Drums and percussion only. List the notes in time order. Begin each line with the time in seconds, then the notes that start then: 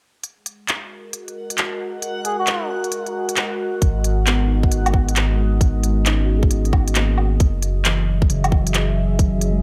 0.24 closed hi-hat
0.46 closed hi-hat
0.69 clap, closed hi-hat
1.13 closed hi-hat
1.28 closed hi-hat
1.50 closed hi-hat
1.58 clap, closed hi-hat
2.02 closed hi-hat
2.25 closed hi-hat
2.47 clap, closed hi-hat
2.84 closed hi-hat
2.92 closed hi-hat
3.06 closed hi-hat
3.29 closed hi-hat
3.37 clap, closed hi-hat
3.82 kick, closed hi-hat
4.04 closed hi-hat
4.27 clap, closed hi-hat
4.63 kick
4.72 closed hi-hat
4.86 closed hi-hat, low woodblock
4.94 kick
5.09 closed hi-hat
5.16 clap, closed hi-hat
5.61 kick, closed hi-hat
5.83 closed hi-hat
6.06 clap, closed hi-hat
6.43 kick
6.51 closed hi-hat
6.65 closed hi-hat
6.73 kick, low woodblock
6.88 closed hi-hat
6.95 clap, closed hi-hat
7.18 low woodblock
7.40 kick, closed hi-hat
7.62 closed hi-hat
7.85 clap, closed hi-hat
8.22 kick
8.30 closed hi-hat
8.44 closed hi-hat, low woodblock
8.52 kick
8.67 closed hi-hat
8.74 clap, closed hi-hat
9.19 kick, closed hi-hat
9.41 closed hi-hat